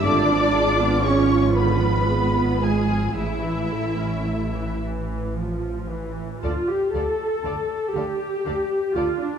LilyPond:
<<
  \new Staff \with { instrumentName = "Violin section" } { \time 6/8 \key a \phrygian \tempo 4. = 39 d'''4 cis'''8 b''4 gis''8 | e''4. r4. | f''8 f''8 f''8 f''8 f''8 f''8 | }
  \new Staff \with { instrumentName = "Violin section" } { \time 6/8 \key a \phrygian d''4 cis''8 b'4 gis'8 | e'4. r4. | <a' d''>8 <a' d''>8 <a' d''>8 <a' d''>8 <a' d''>8 <a' d''>8 | }
  \new Staff \with { instrumentName = "Viola section" } { \clef bass \time 6/8 \key a \phrygian << { eis'2. | e'4. e8 f8 e8 | f'16 g'16 a'4 g'4 f'16 d'16 | } \\ { d16 eis16 gis16 b16 gis16 eis16 d16 eis16 gis16 b16 gis16 eis16 | cis16 e16 a16 cis'16 a16 e16 r4. | r2. | } >> }
  \new Staff \with { instrumentName = "Cello section" } { \clef bass \time 6/8 \key a \phrygian d'4 cis'8 b4 gis8 | e4. r4. | d8 d8 d8 d8 d8 d8 | }
  \new Staff \with { instrumentName = "Double bass section" } { \clef bass \time 6/8 \key a \phrygian gis,,2. | a,,2. | d,8 d,8 d,8 d,8 d,8 d,8 | }
>>